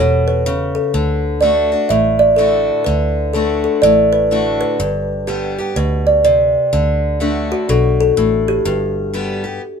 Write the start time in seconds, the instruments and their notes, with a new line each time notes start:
Already playing: fingered electric bass E1, kalimba C#5
0.00 steel-string acoustic guitar B2
0.28 kalimba B4
0.46 steel-string acoustic guitar C#3
0.75 kalimba A4
0.94 fingered electric bass D2, steel-string acoustic guitar D3
1.41 steel-string acoustic guitar D3 A3 D4 F#4, kalimba D5
1.72 steel-string acoustic guitar D4 F#4
1.89 fingered electric bass A1, steel-string acoustic guitar A2, kalimba E5
2.19 kalimba D5
2.36 steel-string acoustic guitar D3 A3 D4 F#4, kalimba A4
2.84 fingered electric bass D2, steel-string acoustic guitar D3, kalimba B4
3.33 steel-string acoustic guitar D3 A3 D4 F#4, kalimba A4
3.64 kalimba A4
3.82 fingered electric bass A1, steel-string acoustic guitar A2, kalimba D5
4.13 kalimba B4
4.31 steel-string acoustic guitar D3 A3 D4 F#4
4.61 kalimba B4
4.79 fingered electric bass G1, steel-string acoustic guitar G2
5.27 steel-string acoustic guitar D3 G3 B3 G4, kalimba G4
5.58 steel-string acoustic guitar B3 G4
5.76 fingered electric bass D2, steel-string acoustic guitar B2, kalimba B4
6.07 kalimba D5
6.24 steel-string acoustic guitar C3, kalimba D5
6.73 fingered electric bass D2, steel-string acoustic guitar D3
7.20 steel-string acoustic guitar D3 A3 D4 F#4, kalimba D4
7.52 kalimba F#4
7.69 fingered electric bass B1, steel-string acoustic guitar B2, kalimba A4
8.00 kalimba A4
8.17 fingered electric bass A1, steel-string acoustic guitar A2
8.48 kalimba G4
8.65 fingered electric bass G1, steel-string acoustic guitar G2
9.13 steel-string acoustic guitar D3 G3 B3 G4
9.44 steel-string acoustic guitar B3 G4